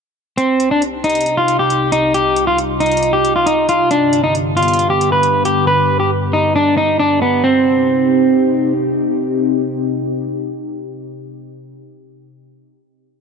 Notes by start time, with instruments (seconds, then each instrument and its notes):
0.38 ambient pad C2 C3 D#4 G4, clean electric guitar C4, closed hi-hat
0.60 closed hi-hat
0.71 clean electric guitar D4
0.82 closed hi-hat
1.04 clean electric guitar D#4, closed hi-hat
1.10 closed hi-hat
1.15 closed hi-hat
1.21 closed hi-hat
1.26 closed hi-hat
1.37 clean electric guitar F4
1.48 closed hi-hat
1.59 clean electric guitar G4
1.70 closed hi-hat
1.92 clean electric guitar D#4, closed hi-hat
2.14 ambient pad F4, clean electric guitar G4, closed hi-hat
2.36 closed hi-hat
2.47 clean electric guitar F4
2.58 closed hi-hat
2.80 clean electric guitar D#4, closed hi-hat
2.86 closed hi-hat
2.92 closed hi-hat
2.97 closed hi-hat
3.03 closed hi-hat
3.13 clean electric guitar G4
3.25 closed hi-hat
3.36 clean electric guitar F4
3.46 clean electric guitar D#4, closed hi-hat
3.69 clean electric guitar F4, closed hi-hat
3.91 ambient pad G2 D3 B3 G4, clean electric guitar D4, closed hi-hat
4.13 closed hi-hat
4.24 clean electric guitar D#4
4.35 closed hi-hat
4.57 clean electric guitar F4, closed hi-hat
4.62 closed hi-hat
4.68 closed hi-hat
4.73 closed hi-hat
4.79 closed hi-hat
4.90 clean electric guitar G4
5.01 closed hi-hat
5.12 clean electric guitar B4
5.23 closed hi-hat
5.45 clean electric guitar G4, closed hi-hat
5.67 clean electric guitar B4
6.00 clean electric guitar G4
6.33 clean electric guitar D#4
6.56 clean electric guitar D4
6.77 clean electric guitar D#4
6.99 clean electric guitar D4
7.22 clean electric guitar B3
7.44 ambient pad C3 C4 D#4 G4, clean electric guitar C4